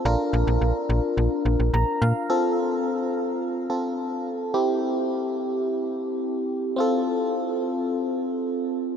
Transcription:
<<
  \new Staff \with { instrumentName = "FM electric piano" } { \time 4/4 \key f \major \tempo 4 = 107 << { r2. bes''8 f''8 | r1 | r1 | r1 | } \\ { <d' f' bes'>1 | <c' f' a'>2~ <c' f' a'>8 <c' f' a'>4. | <c' e' g'>1 | <c' f' a'>1 | } >> }
  \new Staff \with { instrumentName = "FM bass" } { \clef bass \time 4/4 \key f \major bes,,16 r16 bes,,16 bes,,16 bes,,16 r16 bes,,16 r16 bes,,16 r16 bes,,16 bes,,16 bes,,16 r16 bes,16 r16 | r1 | r1 | r1 | }
>>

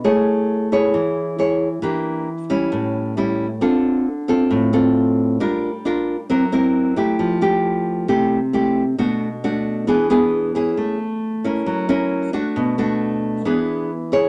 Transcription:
\new Staff \with { instrumentName = "Nylon-string guitar" } { \time 4/4 \key a \major \tempo 4 = 134 << { <e' gis' cis''>4. <e' gis' cis''>4. <e' gis' cis''>8 r8 | <bes d' g'>4 r8 <g cis' e'>4. <g cis' e'>8 r8 | <c' f' a'>4 r8 <c' f' a'>4 <c' f' a'>4. | <d' f' bes'>8 r8 <d' f' bes'>8 r8 <bis e' ais'>8 <bis e' ais'>4 <a e' g'>8~ |
<a e' g'>8 <a e' g'>4. <a e' g'>8 r8 <a e' g'>8 r8 | <a d' fis'>8 r8 <a d' fis'>4 <b d' gis'>8 <b d' gis'>4 <cis' e' gis'>8~ | <cis' e' gis'>8 r4 <cis' e' bes'>4 <cis' e' ais'>4 <a d' fis'>8~ | <a d' fis'>8 <a d' fis'>4. <b d' gis'>4 r8 <e' gis' cis''>8 | } \\ { a2 e2 | e2 a,2 | d2 a,2 | g2 fis2 |
f2 c2 | b,2 e2 | a2 fis2 | b,2 e2 | } >> }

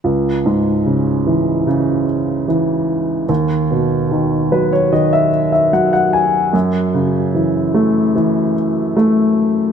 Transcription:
<<
  \new Staff \with { instrumentName = "Upright piano" } { \time 4/4 \key cis \minor \tempo 4 = 74 r1 | r4. b'16 cis''16 dis''16 e''8 e''16 fis''16 fis''16 gis''8 | r1 | }
  \new Staff \with { instrumentName = "Upright piano" } { \clef bass \time 4/4 \key cis \minor cis,8 gis,8 cis8 e8 cis4 e4 | dis,8 b,8 dis8 fis8 dis4 fis4 | fis,8 cis8 e8 a8 e4 a4 | }
>>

